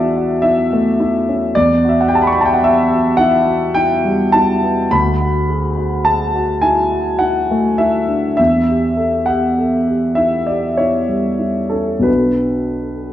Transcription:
grand piano
Already playing: E2 E4 F#4 G#4 D5 E5 F#5 A5
0.17 F#4
0.42 E4 E5
0.73 A3
1.00 E4
1.29 C#4
1.55 E2 D5
1.85 F#4
1.89 E5
2.01 F#5
2.08 G4 G5
2.15 A5
2.22 B5
2.27 C#6
2.33 B5
2.38 F#4 A5
2.46 G5
2.54 F#5
2.64 G4 E5
2.92 F#4
3.17 E4 F#5
3.46 F#4
3.74 E4 G5
4.05 G3
4.32 E4 A5
4.63 B3
4.91 D2 B5
5.21 F#4
5.49 G#4
5.77 F#4
6.05 G#4 A5
6.36 F#4
6.62 E4 G#5
6.91 F#4
7.19 E4 F#5
7.51 A3
7.78 E4 E5
8.08 D4
8.37 E2 E5
8.68 G4
8.97 A4
9.26 G4 F#5
9.58 A4
9.87 G4
10.15 E4 E5
10.47 G4 D5
10.77 E4 C#5
11.08 G3
11.39 E4
11.69 C#4 A4
11.99 B1 F#3 B3 D4 A4 B4

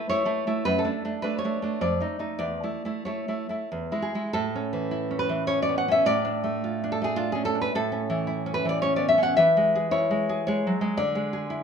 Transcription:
nylon-string guitar
0.09 A3 E4 C#5
0.25 A3 E4
0.47 A3 E4
0.65 F#2 B4
0.79 A4
0.84 A3 D4
1.05 A3 D4
1.22 A3 D4 B4
1.39 C#5
1.45 A3 D4
1.62 A3 D4
1.81 F2 D5
2.00 A3 D#4
2.19 A3 D#4
2.39 E2 D5
2.64 A3 E4
2.85 A3 E4
3.05 A3 E4 C#5
3.28 A3 E4
3.49 A3 E4
3.72 E2
3.92 G#3 E4
4.02 G#4
4.15 G#3 E4
4.33 A2 A4
4.55 C#4
4.73 E3
4.91 E4
5.11 C#4
5.19 B4
5.29 E3
5.47 C#4 C#5
5.62 D5
5.69 B3
5.78 F#5
5.88 C#4 E5
6.06 A2 D5
6.25 D4
6.44 A3
6.64 F4
6.84 D4
6.92 A4
7.02 A3 G#4
7.16 D4 F4
7.32 C#4 G#4
7.45 A4
7.55 D4
7.61 B4
7.75 A2 A4
7.92 C#4
8.10 E3
8.27 E4
8.46 C#4
8.54 B4
8.65 E3 D5
8.82 C#4 C#5
8.96 B3 D5
9.09 E5
9.18 C#4
9.23 F#5
9.37 E3 E5
9.57 G#3
9.76 G#4
9.91 E4 C#5
10.11 G#3
10.29 G#4
10.47 G#3 C#5
10.67 F#3
10.81 G#3
10.97 D3 D5
11.15 G#3
11.33 G#4
11.50 E4

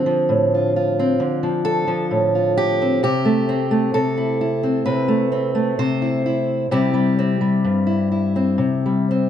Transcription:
steel-string acoustic guitar
Already playing: D3 C4 C5
0.06 F3
0.29 A2
0.54 F4
0.76 F4
0.99 C4
1.20 D3
1.43 F3
1.65 A4
1.87 F3
2.11 A2
2.35 F4
2.57 G4
2.82 C4
3.03 C3 G4
3.25 A3
3.49 C4
3.71 A3
3.94 C3 A4
4.17 E4
4.41 E4
4.63 C4
4.86 C3 B4
5.08 A3
5.32 C4
5.55 A3
5.79 C3 C5
6.02 E4
6.26 E4
6.71 C3 G3 C4 E4 G4
6.94 G3
7.19 C4
7.41 G3
7.64 G2
7.87 E4
8.12 E4
8.36 C4
8.58 C3
8.86 G3
9.11 C4

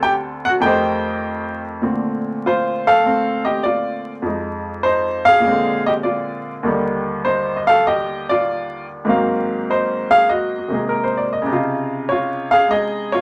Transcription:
upright piano
Already playing: D2 D3 C4 A4
0.03 G4 G5
0.45 F#4 F#5
0.60 F2 D#3 A3 G5
0.66 G4 C5 D#5
1.82 A#2 D3 A3 C4
2.46 F4 C5
2.87 A4 F5
3.04 A3 C4
3.45 G4 D#5
3.63 F4 D5
4.22 F2 F3 G#3
4.27 D#4
4.83 D#4 C5
5.25 G#4 F5
5.40 A#2 G#3
5.47 C4
5.51 D3
5.87 G4 D#5
6.03 F4 D5
6.63 D#2 D#3 G3
6.67 D3
7.25 D#4 C5
7.57 D#5
7.67 A4 F5
7.87 G4 D#5
8.29 F4 D5
9.05 G#2 D#3 F#3 A#3 C4
9.09 F5
9.70 D#4 C5
10.11 G#4 F5
10.29 F#4 D#5
10.58 F#4
10.68 C3 D#3 G#3 A#3 D#4
10.74 G#4
10.89 A#4
11.04 C5
11.17 D5
11.33 D#5
11.42 C3 C#3
11.49 D#4 F4
12.09 F4 C#5
12.51 G#4 F5
12.68 G#3 D#4 D#5
12.72 G#4
13.12 F4 C#5

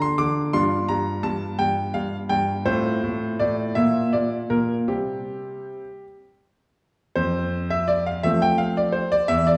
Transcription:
grand piano
Already playing: D3 D4 F4
0.02 C6
0.18 D3 D6
0.53 G2 D4 F4 C6
0.89 G2 A#5
1.23 G2 A5
1.59 G2 G5
1.94 G2 F5
2.29 G2 G5
2.66 A2 C4 F4 C5
3.03 A2
3.39 A2 D5
3.75 A#2 A#3 F4 E5
4.13 A#2 D5
4.50 A#2 A#4
4.88 C3 G3 C4 G4
7.16 F2 C5
7.70 E5
7.88 D5
8.06 F5
8.23 F3 A3 C4 E5
8.42 G5
8.58 F5
8.77 D5
8.92 C5
9.12 D5
9.28 E2 E5
9.47 D5

